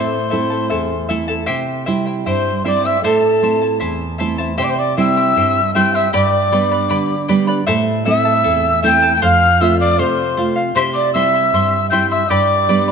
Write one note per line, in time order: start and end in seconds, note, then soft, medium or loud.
0.00 0.69 A2 medium
0.00 0.17 A3 medium
0.00 0.17 C4 soft
0.00 0.17 E4 medium
0.00 0.30 E4 medium
0.00 0.30 A4 medium
0.00 0.31 C5 medium
0.00 1.06 C5 medium
0.00 0.29 E5 medium
0.00 0.30 A5 medium
0.00 1.07 C6 medium
0.30 0.94 A3 medium
0.30 0.95 C4 medium
0.30 0.50 E4 medium
0.30 0.95 E4 medium
0.30 0.50 A4 medium
0.30 0.50 E5 medium
0.30 0.49 A5 medium
0.50 0.69 E4 soft
0.50 0.69 A4 soft
0.50 0.69 A5 soft
0.70 1.46 E2 medium
0.70 1.08 E4 medium
0.70 1.08 A4 medium
0.70 1.07 E5 medium
0.70 1.09 A5 medium
1.09 1.41 A3 soft
1.09 1.41 C4 soft
1.09 1.28 E4 medium
1.09 1.41 E4 medium
1.09 1.28 A4 medium
1.09 1.27 E5 medium
1.09 1.27 A5 medium
1.28 1.46 E4 soft
1.28 1.47 A4 medium
1.28 1.46 A5 medium
1.46 2.24 C3 medium
1.46 1.85 E4 medium
1.46 1.86 G4 medium
1.46 1.86 C5 medium
1.46 1.85 E5 medium
1.46 1.86 G5 loud
1.86 2.49 G3 medium
1.86 2.50 C4 medium
1.86 2.06 E4 medium
1.86 2.50 E4 medium
1.86 2.05 C5 medium
1.86 2.06 E5 medium
1.86 2.05 G5 medium
2.06 2.25 E4 soft
2.06 2.25 C5 soft
2.06 2.26 G5 soft
2.26 3.01 G2 medium
2.26 2.64 E4 medium
2.26 2.64 C5 medium
2.26 2.62 C5 loud
2.26 2.63 E5 medium
2.26 2.65 G5 medium
2.26 2.63 C6 medium
2.65 2.96 G3 soft
2.65 2.96 C4 soft
2.65 2.84 E4 medium
2.65 2.96 E4 soft
2.65 2.84 C5 medium
2.65 2.86 D5 medium
2.65 2.84 E5 medium
2.65 2.83 G5 medium
2.65 2.88 D6 medium
2.84 3.03 E4 soft
2.84 3.03 C5 medium
2.84 3.02 E5 loud
2.84 3.03 G5 soft
2.84 3.04 E6 medium
3.03 3.79 A2 medium
3.03 3.42 E4 medium
3.03 3.77 A4 loud
3.03 3.42 A4 medium
3.03 3.42 C5 medium
3.03 3.41 E5 medium
3.03 3.43 A5 medium
3.03 3.78 A5 medium
3.42 4.04 A3 medium
3.42 4.04 C4 soft
3.42 3.61 E4 medium
3.42 4.05 E4 medium
3.42 3.61 C5 medium
3.42 3.62 E5 medium
3.42 3.60 A5 medium
3.62 3.79 E4 soft
3.62 3.79 C5 soft
3.62 3.80 A5 soft
3.80 4.56 E2 medium
3.80 4.17 E4 medium
3.80 4.18 C5 medium
3.80 4.17 E5 medium
3.80 4.19 A5 medium
4.18 4.51 A3 medium
4.18 4.51 C4 soft
4.18 4.38 E4 medium
4.18 4.51 E4 medium
4.18 4.38 C5 medium
4.18 4.38 E5 medium
4.18 4.37 A5 medium
4.38 4.57 E4 soft
4.38 4.57 C5 medium
4.38 4.57 A5 medium
4.58 5.34 C3 medium
4.58 4.97 E4 medium
4.58 4.97 G4 medium
4.58 4.64 C5 medium
4.58 4.97 C5 medium
4.58 4.96 E5 medium
4.58 4.97 G5 medium
4.58 4.66 C6 medium
4.63 4.69 D5 medium
4.63 4.72 D6 medium
4.67 4.78 C5 medium
4.67 4.80 C6 medium
4.77 4.96 D5 medium
4.77 4.98 D6 medium
4.97 5.59 G3 medium
4.97 5.59 C4 medium
4.97 5.16 E4 medium
4.97 5.60 E4 medium
4.97 5.16 C5 medium
4.97 5.70 E5 loud
4.97 5.16 E5 medium
4.97 5.15 G5 medium
4.97 5.72 E6 medium
5.16 5.35 E4 soft
5.16 5.36 C5 soft
5.16 5.36 G5 soft
5.36 6.11 G2 medium
5.36 5.74 E4 medium
5.36 5.75 C5 medium
5.36 5.74 E5 medium
5.36 5.75 G5 medium
5.74 6.06 G3 medium
5.74 6.06 C4 soft
5.74 5.94 E4 medium
5.74 6.06 E4 medium
5.74 5.93 C5 medium
5.74 5.94 E5 medium
5.74 5.95 G5 loud
5.74 5.93 G5 medium
5.74 5.97 G6 medium
5.94 6.13 E4 soft
5.94 6.13 C5 soft
5.94 6.12 E5 loud
5.94 6.12 G5 medium
5.94 6.14 E6 medium
6.13 6.88 G2 medium
6.13 6.52 G4 medium
6.13 6.51 B4 medium
6.13 7.25 D5 loud
6.13 6.51 D5 medium
6.13 6.51 G5 medium
6.13 6.52 B5 medium
6.13 7.26 D6 medium
6.52 7.14 G3 medium
6.52 7.14 B3 medium
6.52 7.14 D4 medium
6.52 6.71 B4 medium
6.52 6.70 D5 medium
6.52 6.71 G5 medium
6.52 6.70 B5 medium
6.71 6.89 B4 soft
6.71 6.89 D5 soft
6.71 6.89 B5 soft
6.89 7.65 D3 medium
6.89 7.28 B4 medium
6.89 7.28 D5 medium
6.89 7.27 G5 medium
6.89 7.28 B5 medium
7.28 7.60 G3 medium
7.28 7.60 B3 soft
7.28 7.61 D4 medium
7.28 7.47 B4 medium
7.28 7.47 D5 medium
7.28 7.48 G5 medium
7.28 7.46 B5 medium
7.47 7.67 B4 medium
7.47 7.67 D5 medium
7.47 7.66 B5 medium
7.67 8.43 A2 medium
7.67 8.05 E4 medium
7.67 8.05 A4 medium
7.67 8.06 C5 medium
7.67 8.04 E5 loud
7.67 8.05 A5 loud
8.05 8.68 A3 medium
8.05 8.68 C4 medium
8.05 8.25 E4 medium
8.05 8.69 E4 medium
8.05 8.24 A4 medium
8.05 8.25 E5 medium
8.05 8.80 E5 loud
8.05 8.24 A5 medium
8.05 8.80 E6 medium
8.25 8.43 E4 soft
8.25 8.43 A4 soft
8.25 8.43 A5 soft
8.43 9.20 E2 medium
8.43 8.82 E4 medium
8.43 8.82 A4 medium
8.43 8.81 E5 medium
8.43 8.83 A5 medium
8.83 9.14 A3 medium
8.83 9.14 C4 medium
8.83 9.02 E4 medium
8.83 9.15 E4 medium
8.83 9.02 A4 medium
8.83 9.02 E5 medium
8.83 9.15 G5 loud
8.83 9.01 A5 medium
8.83 9.15 G6 loud
9.02 9.21 E4 soft
9.02 9.21 A4 medium
9.02 9.22 A5 medium
9.15 9.24 G5 medium
9.15 9.25 G6 medium
9.22 9.97 F2 medium
9.22 9.59 A4 medium
9.22 9.60 C5 medium
9.22 9.60 F5 medium
9.22 9.63 F5 loud
9.22 9.63 F6 loud
9.61 10.22 A3 medium
9.61 10.22 C4 medium
9.61 10.23 F4 medium
9.61 9.80 A4 medium
9.61 9.80 C5 medium
9.61 9.78 E5 medium
9.61 9.79 F5 medium
9.61 9.80 E6 medium
9.79 9.98 C5 soft
9.79 10.01 D5 medium
9.79 9.99 F5 soft
9.79 10.01 D6 medium
9.98 10.74 C3 medium
9.98 10.36 A4 medium
9.98 10.36 C5 medium
9.98 10.57 C5 medium
9.98 10.37 F5 medium
9.98 10.57 C6 medium
10.37 10.68 A3 medium
10.37 10.69 C4 soft
10.37 10.69 F4 medium
10.37 10.56 A4 medium
10.37 10.56 C5 medium
10.37 10.54 F5 medium
10.56 10.75 C5 soft
10.56 10.75 F5 medium
10.75 11.50 C3 medium
10.75 11.14 E4 medium
10.75 11.15 G4 medium
10.75 10.81 C5 medium
10.75 11.13 C5 medium
10.75 11.14 E5 medium
10.75 10.81 C6 medium
10.75 11.15 C6 medium
10.93 11.13 D5 medium
10.93 11.12 D6 medium
11.13 11.76 G3 medium
11.13 11.76 C4 medium
11.13 11.34 E4 medium
11.13 11.77 E4 medium
11.13 11.34 C5 medium
11.13 11.87 E5 loud
11.13 11.33 E5 medium
11.13 11.33 C6 medium
11.13 11.87 E6 medium
11.34 11.53 E4 soft
11.34 11.53 E5 soft
11.34 11.53 C6 soft
11.53 12.28 G2 medium
11.53 11.90 E4 medium
11.53 11.90 C5 medium
11.53 11.91 E5 medium
11.53 11.92 C6 medium
11.90 12.22 G3 medium
11.90 12.23 C4 soft
11.90 12.11 E4 medium
11.90 12.23 E4 medium
11.90 12.11 C5 medium
11.90 12.11 E5 medium
11.90 12.09 G5 medium
11.90 12.10 C6 medium
11.90 12.09 G6 medium
12.09 12.30 E4 soft
12.09 12.30 E5 medium
12.09 12.30 C6 medium
12.09 12.31 E6 medium
12.29 12.92 G2 medium
12.29 12.68 G4 medium
12.29 12.68 B4 medium
12.29 12.92 D5 loud
12.29 12.68 D5 medium
12.29 12.67 G5 medium
12.29 12.69 B5 medium
12.29 12.92 D6 medium
12.69 12.92 G3 medium
12.69 12.92 B3 medium
12.69 12.92 D4 medium
12.69 12.88 B4 medium
12.69 12.88 D5 medium
12.69 12.88 G5 medium
12.69 12.87 B5 medium
12.88 12.92 B5 medium